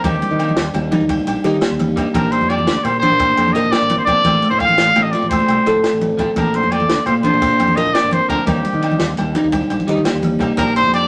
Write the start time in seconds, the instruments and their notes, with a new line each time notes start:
0.04 fingered electric bass D#2, kalimba G3, clean electric guitar G3 A#3 D#4, trumpet G4, kick, ride, high conga, low agogo
0.22 kalimba G3, ride
0.31 fingered electric bass D#3, low conga
0.39 clean electric guitar G3 A#3 D#4, ride, low agogo
0.49 high conga
0.56 fingered electric bass D#2, snare, ride
0.67 low conga
0.74 fingered electric bass D#2, kalimba G3, ride, low conga, low agogo
0.92 clean electric guitar G3 A#3 D#4, kalimba D#4, ride, high conga, low conga
1.01 fingered electric bass D#2
1.09 kalimba G3, kick, ride, low conga, low agogo
1.19 low conga
1.27 fingered electric bass A#1, kalimba G3, ride, low agogo
1.37 low conga
1.44 fingered electric bass D#3, clean electric guitar G3 A#3 D#4, kalimba G4, snare, ride
1.54 low conga
1.61 kalimba A#3, snare, ride, low conga, low agogo
1.71 fingered electric bass D#2, low conga
1.79 kalimba A#3, ride, high conga
1.96 fingered electric bass G2, clean electric guitar G3 A#3 D#4, kalimba A#3, kick, ride, low conga, low agogo
2.14 fingered electric bass A#1, clean electric guitar F3 C4 D4, kalimba A#3, trumpet A#4, kick, ride, high conga, low agogo
2.31 kalimba A#3, trumpet C5, ride
2.41 fingered electric bass F2, low conga
2.49 clean electric guitar F3 C4 D4, trumpet D5, ride, low agogo
2.58 high conga
2.67 fingered electric bass D2, snare, ride
2.76 low conga
2.84 fingered electric bass A#2, kalimba A#3, trumpet C5, ride, low conga, low agogo
2.99 clean electric guitar F3, kalimba D4, trumpet C5, ride, high conga, low conga
3.04 clean electric guitar C4, muted clean electric guitar stroke
3.11 fingered electric bass A#2
3.19 kalimba A#3, kick, ride, low conga, low agogo
3.30 low conga
3.37 fingered electric bass F2, kalimba A#3, ride, low agogo
3.48 high conga, low conga
3.52 fingered electric bass A#2, clean electric guitar F3, kalimba A#4, trumpet D#5, snare, ride
3.58 clean electric guitar C4 D4
3.65 low conga
3.71 kalimba A#3, trumpet D5, snare, ride, low conga, low agogo
3.82 fingered electric bass G1, low conga
3.89 kalimba C4, ride, high conga
3.98 trumpet C5
4.04 fingered electric bass A#1, clean electric guitar F3, trumpet D5, kick, ride, low conga, low agogo
4.09 kalimba C4, clean electric guitar C4 D4
4.24 fingered electric bass A1, clean electric guitar F3 A3 C4, kalimba A3, kick, ride, high conga, low agogo
4.42 kalimba A3, ride
4.50 fingered electric bass A2, trumpet C5, low conga
4.59 clean electric guitar F3, trumpet F5, muted clean electric guitar stroke, kick, ride, low conga, low agogo
4.65 clean electric guitar C4, high conga
4.78 fingered electric bass A1, snare, ride
4.96 fingered electric bass A1, kalimba A3, ride, low conga, low agogo
5.02 trumpet D#5
5.11 clean electric guitar F3 A3, kalimba F4, trumpet D5, ride
5.16 clean electric guitar C4
5.22 fingered electric bass A1, low conga
5.29 kalimba A3, trumpet C5, kick, ride, low conga, low agogo
5.39 low conga
5.48 fingered electric bass C2, kalimba A3, ride, low agogo
5.66 fingered electric bass A2, clean electric guitar F3 A3 C4, kalimba A4, snare, ride
5.75 low conga
5.84 kalimba C4, snare, ride, low conga, low agogo
5.93 fingered electric bass A1, low conga
6.01 kalimba C4, ride, high conga, low conga
6.11 low conga
6.17 fingered electric bass A1, clean electric guitar F3 A3 C4, kalimba C4, kick, ride, low conga, low agogo
6.36 fingered electric bass A#1, clean electric guitar F3 C4 D4, kalimba A#3, trumpet A#4, kick, ride, high conga, low agogo
6.54 kalimba A#3, trumpet C5, ride
6.63 fingered electric bass F2, low conga
6.72 clean electric guitar F3 C4, trumpet D5, muted clean electric guitar stroke, ride, low agogo
6.80 high conga
6.89 fingered electric bass D2, snare, ride
7.06 fingered electric bass A#2, kalimba A#3, trumpet C5, ride, low conga, low agogo
7.23 clean electric guitar F3 C4, kalimba D4, trumpet C5, ride, high conga, low conga
7.27 clean electric guitar D4
7.34 fingered electric bass A#2
7.41 kalimba A#3, kick, ride, low conga, low agogo
7.49 low conga
7.60 fingered electric bass F2, kalimba A#3, ride, low agogo
7.68 high conga, low conga
7.76 fingered electric bass A#2, clean electric guitar F3 C4 D4, kalimba A#4, trumpet D#5, snare, ride
7.86 low conga
7.94 kalimba C4, trumpet D5, snare, ride, low conga, low agogo
8.03 fingered electric bass G1, low conga
8.11 kalimba C4, trumpet C5, ride, high conga
8.28 fingered electric bass D2, clean electric guitar F3 C4 D4, kalimba C4, trumpet A#4, kick, ride, low conga, low agogo
8.46 fingered electric bass D#2, clean electric guitar G3 A#3 D#4, kalimba G3, trumpet G4, kick, ride, high conga, low agogo
8.65 kalimba G3, ride
8.73 fingered electric bass D#3, low conga
8.82 clean electric guitar G3 D#4, ride, low agogo
8.91 high conga
8.99 fingered electric bass D#2, snare, ride
9.17 fingered electric bass D#2, kalimba G3, ride, low conga, low agogo
9.35 clean electric guitar G3 A#3 D#4, kalimba D#4, ride, high conga, low conga
9.44 fingered electric bass D#2
9.52 kalimba G3, kick, ride, low conga, low agogo
9.61 low conga
9.70 fingered electric bass A#1, kalimba G3, ride, low agogo
9.80 high conga, low conga
9.87 fingered electric bass D#3, clean electric guitar G3 D#4, kalimba G4, muted clean electric guitar stroke, snare, ride
9.97 low conga
10.05 kalimba A#3, snare, ride, low conga, low agogo
10.14 fingered electric bass D#2, low conga
10.22 kalimba A#3, ride, high conga
10.39 fingered electric bass C2, clean electric guitar G3 A#3, kalimba A#3, kick, ride, low conga, low agogo
10.43 clean electric guitar D#4
10.57 fingered electric bass A#1, clean electric guitar F3 C4 D4, kalimba A#3, trumpet A#4, kick, ride, high conga, low agogo
10.76 kalimba A#3, trumpet C5, ride
10.84 fingered electric bass F2, low conga
10.92 clean electric guitar F3 C4 D4, trumpet D5, ride, low agogo